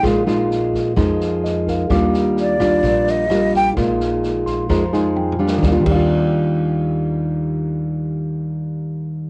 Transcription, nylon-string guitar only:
\new Staff \with { instrumentName = "Nylon-string guitar" } { \time 4/4 \key ees \major \tempo 4 = 129 << { <aes ees' f'>8 <aes ees' f'>4. <aes ees' f'>2 | <g d' f'>4. <g d' f'>4. <g d' f'>4 | <aes ees' f'>2 <aes ees' f'>8 <aes ees' f'>4 <g d' f'>8~ | <g d' f'>4 r2. |
r1 | } \\ { bes,2 f2 | ees2 bes,2 | bes,2 f2 | <ees g d' f'>8 <ees g d' f'>2.~ <ees g d' f'>8~ |
<ees g d' f'>1 | } >> }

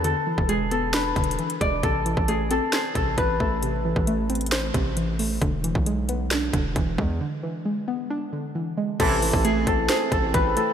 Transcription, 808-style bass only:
\new Staff \with { instrumentName = "808-style bass" } { \clef bass \time 4/4 \key a \minor \tempo 4 = 134 e,16 r8 e,,4.~ e,,16 e,,8 r8 e,,8 | a,,8. a,,4 r8. a,,8 a,,8 a,,8~ | a,,8. a,,4.~ a,,16 a,,4. | e,,8. b,,4.~ b,,16 e,,8 e,,8 e,8 |
r1 | a,,8. a,,8. a,,8 r8 a,,8 a,,8 r8 | }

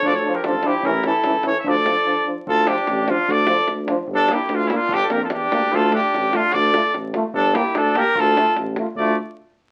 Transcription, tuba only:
\new Staff \with { instrumentName = "Tuba" } { \clef bass \time 2/4 \key d \minor \tempo 4 = 148 d,4 a,,8 r8 | a,,4 cis,8 r8 | d,4 r4 | d,4 a,,4 |
d,4 d,4 | g,,4 d,4 | g,,8 f,8 e,8 d,8 | d,4 a,,4 |
d,4 a,,4 | g,,4 d,4 | d,4 a,,4 | d,8 r4. | }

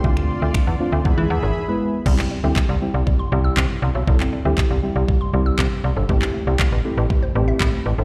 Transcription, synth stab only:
\new Staff \with { instrumentName = "Synth stab" } { \time 4/4 \key c \major \tempo 4 = 119 <a c' d' f'>4~ <a c' d' f'>16 r16 <a c' d' f'>8 <gis b e' gis'>4 r16 <gis b e' b'>8 r16 | <g c' e' g'>8 r16 <g c' e' g'>8 r16 <g c' e' g'>8. r16 <g c' e' g'>4~ <g c' e' g'>16 r16 | <g c' e' a'>8 r16 <g c' e' g'>8 r16 <g c' e' g'>8. r16 <g c' e' g'>4~ <g c' e' g'>16 r16 | <a c' e' g'>8 r16 <a c' e' g'>8 r16 <a c' e' g'>8. r16 <a c' e' g'>4~ <a c' e' g'>16 r16 | }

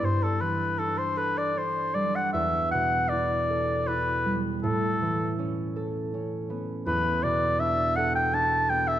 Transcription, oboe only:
\new Staff \with { instrumentName = "Oboe" } { \time 6/8 \key e \minor \tempo 4. = 53 c''16 a'16 b'8 a'16 c''16 b'16 d''16 c''8 d''16 fis''16 | e''8 fis''8 d''4 b'8. r16 | a'4 r2 | b'8 d''8 e''8 fis''16 g''16 a''8 g''16 e''16 | }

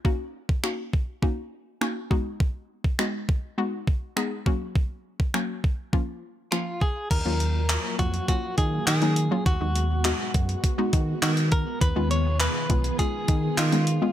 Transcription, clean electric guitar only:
\new Staff \with { instrumentName = "Clean electric guitar" } { \time 4/4 \key ges \major \tempo 4 = 102 r1 | r1 | r2. f'8 aes'8 | bes'4. ges'8 ges'8 aes'8 aes'4 |
ges'2. ges'8 bes'8 | ces''8 des''8 ces''4 aes'4 f'4 | }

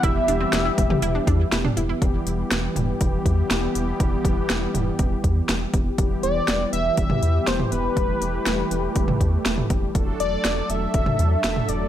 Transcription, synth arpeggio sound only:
\new Staff \with { instrumentName = "Synth arpeggio sound" } { \time 4/4 \key e \minor \tempo 4 = 121 e'8 d'16 c'16 d'16 e'8 g'16 e'16 d'16 d'8 e'16 d'16 e'16 e'16 | r1 | r1 | r1 |
r1 | r1 | }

